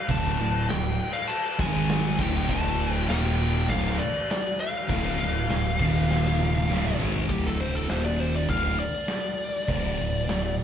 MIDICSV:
0, 0, Header, 1, 6, 480
1, 0, Start_track
1, 0, Tempo, 599401
1, 82, Time_signature, 4, 2, 24, 8
1, 8518, End_track
2, 0, Start_track
2, 0, Title_t, "Lead electric guitar"
2, 0, Program_c, 0, 29
2, 0, Note_on_c, 0, 77, 93
2, 88, Note_on_c, 0, 81, 110
2, 89, Note_off_c, 0, 77, 0
2, 533, Note_off_c, 0, 81, 0
2, 553, Note_on_c, 0, 79, 106
2, 906, Note_on_c, 0, 77, 90
2, 928, Note_off_c, 0, 79, 0
2, 1021, Note_on_c, 0, 81, 112
2, 1038, Note_off_c, 0, 77, 0
2, 1279, Note_off_c, 0, 81, 0
2, 1285, Note_on_c, 0, 80, 105
2, 1509, Note_off_c, 0, 80, 0
2, 1519, Note_on_c, 0, 80, 102
2, 1760, Note_off_c, 0, 80, 0
2, 1763, Note_on_c, 0, 79, 92
2, 1986, Note_off_c, 0, 79, 0
2, 2007, Note_on_c, 0, 81, 113
2, 2351, Note_off_c, 0, 81, 0
2, 2351, Note_on_c, 0, 79, 113
2, 2452, Note_off_c, 0, 79, 0
2, 2474, Note_on_c, 0, 79, 98
2, 2961, Note_on_c, 0, 77, 100
2, 2972, Note_off_c, 0, 79, 0
2, 3193, Note_off_c, 0, 77, 0
2, 3196, Note_on_c, 0, 74, 78
2, 3444, Note_off_c, 0, 74, 0
2, 3453, Note_on_c, 0, 74, 84
2, 3683, Note_off_c, 0, 74, 0
2, 3686, Note_on_c, 0, 77, 85
2, 4155, Note_off_c, 0, 77, 0
2, 4165, Note_on_c, 0, 77, 92
2, 5571, Note_off_c, 0, 77, 0
2, 5843, Note_on_c, 0, 67, 93
2, 5959, Note_off_c, 0, 67, 0
2, 5980, Note_on_c, 0, 69, 80
2, 6088, Note_off_c, 0, 69, 0
2, 6090, Note_on_c, 0, 72, 94
2, 6202, Note_off_c, 0, 72, 0
2, 6204, Note_on_c, 0, 69, 81
2, 6320, Note_off_c, 0, 69, 0
2, 6322, Note_on_c, 0, 72, 94
2, 6439, Note_off_c, 0, 72, 0
2, 6443, Note_on_c, 0, 74, 85
2, 6566, Note_off_c, 0, 74, 0
2, 6566, Note_on_c, 0, 72, 82
2, 6680, Note_off_c, 0, 72, 0
2, 6696, Note_on_c, 0, 74, 86
2, 6802, Note_off_c, 0, 74, 0
2, 6802, Note_on_c, 0, 77, 87
2, 7035, Note_off_c, 0, 77, 0
2, 7044, Note_on_c, 0, 74, 97
2, 8451, Note_off_c, 0, 74, 0
2, 8518, End_track
3, 0, Start_track
3, 0, Title_t, "Distorted electric guitar"
3, 0, Program_c, 1, 30
3, 67, Note_on_c, 1, 38, 99
3, 72, Note_on_c, 1, 45, 100
3, 77, Note_on_c, 1, 50, 109
3, 297, Note_off_c, 1, 38, 0
3, 299, Note_off_c, 1, 45, 0
3, 307, Note_on_c, 1, 38, 64
3, 308, Note_on_c, 1, 45, 77
3, 312, Note_off_c, 1, 50, 0
3, 506, Note_off_c, 1, 38, 0
3, 507, Note_off_c, 1, 45, 0
3, 550, Note_on_c, 1, 38, 70
3, 551, Note_on_c, 1, 45, 85
3, 748, Note_off_c, 1, 38, 0
3, 748, Note_off_c, 1, 45, 0
3, 1273, Note_on_c, 1, 44, 95
3, 1277, Note_on_c, 1, 51, 115
3, 1282, Note_on_c, 1, 56, 121
3, 1749, Note_off_c, 1, 44, 0
3, 1752, Note_off_c, 1, 51, 0
3, 1752, Note_on_c, 1, 38, 79
3, 1755, Note_off_c, 1, 56, 0
3, 1757, Note_on_c, 1, 45, 89
3, 1760, Note_on_c, 1, 50, 100
3, 1990, Note_off_c, 1, 38, 0
3, 1992, Note_off_c, 1, 45, 0
3, 1994, Note_off_c, 1, 50, 0
3, 1998, Note_on_c, 1, 38, 95
3, 2002, Note_on_c, 1, 45, 99
3, 2005, Note_on_c, 1, 50, 106
3, 2471, Note_off_c, 1, 38, 0
3, 2474, Note_off_c, 1, 45, 0
3, 2474, Note_off_c, 1, 50, 0
3, 2474, Note_on_c, 1, 39, 103
3, 2478, Note_on_c, 1, 46, 99
3, 2478, Note_on_c, 1, 51, 116
3, 2942, Note_off_c, 1, 39, 0
3, 2943, Note_off_c, 1, 46, 0
3, 2946, Note_on_c, 1, 38, 102
3, 2946, Note_on_c, 1, 45, 104
3, 2952, Note_off_c, 1, 51, 0
3, 2955, Note_on_c, 1, 50, 107
3, 3186, Note_off_c, 1, 38, 0
3, 3187, Note_off_c, 1, 45, 0
3, 3191, Note_off_c, 1, 50, 0
3, 3907, Note_on_c, 1, 38, 88
3, 3911, Note_on_c, 1, 45, 93
3, 3920, Note_on_c, 1, 50, 101
3, 4141, Note_off_c, 1, 38, 0
3, 4145, Note_off_c, 1, 45, 0
3, 4150, Note_on_c, 1, 38, 63
3, 4153, Note_off_c, 1, 50, 0
3, 4154, Note_on_c, 1, 45, 72
3, 4348, Note_off_c, 1, 38, 0
3, 4350, Note_off_c, 1, 45, 0
3, 4387, Note_on_c, 1, 38, 72
3, 4391, Note_on_c, 1, 45, 78
3, 4586, Note_off_c, 1, 38, 0
3, 4588, Note_off_c, 1, 45, 0
3, 4630, Note_on_c, 1, 39, 83
3, 4632, Note_on_c, 1, 46, 86
3, 4634, Note_on_c, 1, 51, 100
3, 5345, Note_off_c, 1, 39, 0
3, 5349, Note_off_c, 1, 46, 0
3, 5349, Note_on_c, 1, 38, 93
3, 5351, Note_off_c, 1, 51, 0
3, 5358, Note_on_c, 1, 45, 102
3, 5363, Note_on_c, 1, 50, 99
3, 5588, Note_off_c, 1, 38, 0
3, 5593, Note_off_c, 1, 45, 0
3, 5595, Note_off_c, 1, 50, 0
3, 5602, Note_on_c, 1, 44, 85
3, 5608, Note_on_c, 1, 51, 93
3, 5608, Note_on_c, 1, 56, 86
3, 5830, Note_off_c, 1, 44, 0
3, 5833, Note_off_c, 1, 51, 0
3, 5833, Note_on_c, 1, 38, 86
3, 5836, Note_on_c, 1, 45, 96
3, 5838, Note_off_c, 1, 56, 0
3, 5841, Note_on_c, 1, 50, 108
3, 6310, Note_off_c, 1, 38, 0
3, 6312, Note_off_c, 1, 45, 0
3, 6314, Note_off_c, 1, 50, 0
3, 6315, Note_on_c, 1, 39, 94
3, 6323, Note_on_c, 1, 46, 99
3, 6325, Note_on_c, 1, 51, 102
3, 6791, Note_off_c, 1, 39, 0
3, 6795, Note_off_c, 1, 46, 0
3, 6796, Note_off_c, 1, 51, 0
3, 6797, Note_on_c, 1, 38, 91
3, 6800, Note_on_c, 1, 45, 90
3, 6806, Note_on_c, 1, 50, 100
3, 7033, Note_off_c, 1, 38, 0
3, 7034, Note_off_c, 1, 45, 0
3, 7037, Note_off_c, 1, 50, 0
3, 7752, Note_on_c, 1, 38, 82
3, 7757, Note_on_c, 1, 45, 104
3, 7761, Note_on_c, 1, 50, 104
3, 7990, Note_off_c, 1, 38, 0
3, 7990, Note_off_c, 1, 45, 0
3, 7994, Note_off_c, 1, 50, 0
3, 8000, Note_on_c, 1, 45, 74
3, 8003, Note_on_c, 1, 38, 66
3, 8193, Note_off_c, 1, 45, 0
3, 8195, Note_off_c, 1, 38, 0
3, 8240, Note_on_c, 1, 38, 70
3, 8245, Note_on_c, 1, 45, 79
3, 8433, Note_off_c, 1, 38, 0
3, 8435, Note_off_c, 1, 45, 0
3, 8518, End_track
4, 0, Start_track
4, 0, Title_t, "Distorted electric guitar"
4, 0, Program_c, 2, 30
4, 4420, Note_on_c, 2, 38, 71
4, 4603, Note_off_c, 2, 38, 0
4, 8518, End_track
5, 0, Start_track
5, 0, Title_t, "Picked electric bass"
5, 0, Program_c, 3, 34
5, 71, Note_on_c, 3, 26, 103
5, 299, Note_off_c, 3, 26, 0
5, 315, Note_on_c, 3, 26, 81
5, 542, Note_off_c, 3, 26, 0
5, 568, Note_on_c, 3, 26, 84
5, 789, Note_off_c, 3, 26, 0
5, 1277, Note_on_c, 3, 32, 99
5, 1727, Note_off_c, 3, 32, 0
5, 1752, Note_on_c, 3, 26, 95
5, 1980, Note_off_c, 3, 26, 0
5, 1995, Note_on_c, 3, 26, 104
5, 2446, Note_off_c, 3, 26, 0
5, 2472, Note_on_c, 3, 27, 103
5, 2924, Note_off_c, 3, 27, 0
5, 2961, Note_on_c, 3, 26, 102
5, 3184, Note_off_c, 3, 26, 0
5, 3921, Note_on_c, 3, 26, 101
5, 4145, Note_off_c, 3, 26, 0
5, 4151, Note_on_c, 3, 26, 86
5, 4379, Note_off_c, 3, 26, 0
5, 4395, Note_on_c, 3, 26, 88
5, 4621, Note_off_c, 3, 26, 0
5, 4634, Note_on_c, 3, 27, 97
5, 5326, Note_off_c, 3, 27, 0
5, 5357, Note_on_c, 3, 26, 97
5, 5582, Note_off_c, 3, 26, 0
5, 5597, Note_on_c, 3, 32, 85
5, 5822, Note_off_c, 3, 32, 0
5, 5838, Note_on_c, 3, 26, 100
5, 6288, Note_off_c, 3, 26, 0
5, 6319, Note_on_c, 3, 27, 95
5, 6769, Note_off_c, 3, 27, 0
5, 6795, Note_on_c, 3, 26, 95
5, 7021, Note_off_c, 3, 26, 0
5, 7756, Note_on_c, 3, 26, 102
5, 7982, Note_off_c, 3, 26, 0
5, 7998, Note_on_c, 3, 26, 81
5, 8223, Note_off_c, 3, 26, 0
5, 8238, Note_on_c, 3, 26, 80
5, 8463, Note_off_c, 3, 26, 0
5, 8518, End_track
6, 0, Start_track
6, 0, Title_t, "Drums"
6, 70, Note_on_c, 9, 49, 88
6, 71, Note_on_c, 9, 36, 107
6, 150, Note_off_c, 9, 49, 0
6, 152, Note_off_c, 9, 36, 0
6, 311, Note_on_c, 9, 49, 67
6, 391, Note_off_c, 9, 49, 0
6, 555, Note_on_c, 9, 49, 89
6, 563, Note_on_c, 9, 38, 112
6, 635, Note_off_c, 9, 49, 0
6, 644, Note_off_c, 9, 38, 0
6, 796, Note_on_c, 9, 49, 68
6, 876, Note_off_c, 9, 49, 0
6, 1035, Note_on_c, 9, 49, 87
6, 1115, Note_off_c, 9, 49, 0
6, 1275, Note_on_c, 9, 36, 110
6, 1276, Note_on_c, 9, 49, 68
6, 1355, Note_off_c, 9, 36, 0
6, 1356, Note_off_c, 9, 49, 0
6, 1512, Note_on_c, 9, 49, 98
6, 1521, Note_on_c, 9, 38, 122
6, 1592, Note_off_c, 9, 49, 0
6, 1601, Note_off_c, 9, 38, 0
6, 1752, Note_on_c, 9, 49, 62
6, 1753, Note_on_c, 9, 36, 112
6, 1832, Note_off_c, 9, 49, 0
6, 1833, Note_off_c, 9, 36, 0
6, 1991, Note_on_c, 9, 49, 87
6, 1993, Note_on_c, 9, 36, 109
6, 2071, Note_off_c, 9, 49, 0
6, 2073, Note_off_c, 9, 36, 0
6, 2230, Note_on_c, 9, 49, 61
6, 2310, Note_off_c, 9, 49, 0
6, 2473, Note_on_c, 9, 49, 82
6, 2482, Note_on_c, 9, 38, 120
6, 2553, Note_off_c, 9, 49, 0
6, 2562, Note_off_c, 9, 38, 0
6, 2717, Note_on_c, 9, 49, 55
6, 2797, Note_off_c, 9, 49, 0
6, 2959, Note_on_c, 9, 36, 119
6, 2963, Note_on_c, 9, 49, 85
6, 3039, Note_off_c, 9, 36, 0
6, 3043, Note_off_c, 9, 49, 0
6, 3198, Note_on_c, 9, 49, 65
6, 3278, Note_off_c, 9, 49, 0
6, 3443, Note_on_c, 9, 49, 91
6, 3452, Note_on_c, 9, 38, 125
6, 3523, Note_off_c, 9, 49, 0
6, 3532, Note_off_c, 9, 38, 0
6, 3676, Note_on_c, 9, 49, 61
6, 3756, Note_off_c, 9, 49, 0
6, 3919, Note_on_c, 9, 36, 118
6, 3921, Note_on_c, 9, 49, 91
6, 3999, Note_off_c, 9, 36, 0
6, 4001, Note_off_c, 9, 49, 0
6, 4162, Note_on_c, 9, 49, 71
6, 4242, Note_off_c, 9, 49, 0
6, 4399, Note_on_c, 9, 49, 94
6, 4408, Note_on_c, 9, 38, 118
6, 4479, Note_off_c, 9, 49, 0
6, 4488, Note_off_c, 9, 38, 0
6, 4640, Note_on_c, 9, 36, 102
6, 4642, Note_on_c, 9, 49, 66
6, 4720, Note_off_c, 9, 36, 0
6, 4722, Note_off_c, 9, 49, 0
6, 4891, Note_on_c, 9, 38, 69
6, 4971, Note_off_c, 9, 38, 0
6, 5013, Note_on_c, 9, 38, 67
6, 5093, Note_off_c, 9, 38, 0
6, 5118, Note_on_c, 9, 48, 85
6, 5198, Note_off_c, 9, 48, 0
6, 5243, Note_on_c, 9, 48, 76
6, 5323, Note_off_c, 9, 48, 0
6, 5364, Note_on_c, 9, 47, 94
6, 5445, Note_off_c, 9, 47, 0
6, 5481, Note_on_c, 9, 45, 90
6, 5562, Note_off_c, 9, 45, 0
6, 5604, Note_on_c, 9, 43, 107
6, 5684, Note_off_c, 9, 43, 0
6, 5726, Note_on_c, 9, 43, 106
6, 5807, Note_off_c, 9, 43, 0
6, 5840, Note_on_c, 9, 36, 113
6, 5840, Note_on_c, 9, 46, 80
6, 5920, Note_off_c, 9, 36, 0
6, 5921, Note_off_c, 9, 46, 0
6, 6082, Note_on_c, 9, 46, 58
6, 6162, Note_off_c, 9, 46, 0
6, 6316, Note_on_c, 9, 46, 76
6, 6325, Note_on_c, 9, 38, 109
6, 6396, Note_off_c, 9, 46, 0
6, 6405, Note_off_c, 9, 38, 0
6, 6558, Note_on_c, 9, 46, 56
6, 6638, Note_off_c, 9, 46, 0
6, 6791, Note_on_c, 9, 46, 78
6, 6797, Note_on_c, 9, 36, 104
6, 6871, Note_off_c, 9, 46, 0
6, 6877, Note_off_c, 9, 36, 0
6, 7034, Note_on_c, 9, 46, 64
6, 7114, Note_off_c, 9, 46, 0
6, 7264, Note_on_c, 9, 46, 89
6, 7273, Note_on_c, 9, 38, 127
6, 7345, Note_off_c, 9, 46, 0
6, 7353, Note_off_c, 9, 38, 0
6, 7511, Note_on_c, 9, 46, 55
6, 7592, Note_off_c, 9, 46, 0
6, 7750, Note_on_c, 9, 46, 82
6, 7755, Note_on_c, 9, 36, 102
6, 7830, Note_off_c, 9, 46, 0
6, 7835, Note_off_c, 9, 36, 0
6, 7991, Note_on_c, 9, 46, 63
6, 8071, Note_off_c, 9, 46, 0
6, 8233, Note_on_c, 9, 46, 88
6, 8242, Note_on_c, 9, 38, 113
6, 8313, Note_off_c, 9, 46, 0
6, 8322, Note_off_c, 9, 38, 0
6, 8473, Note_on_c, 9, 46, 61
6, 8518, Note_off_c, 9, 46, 0
6, 8518, End_track
0, 0, End_of_file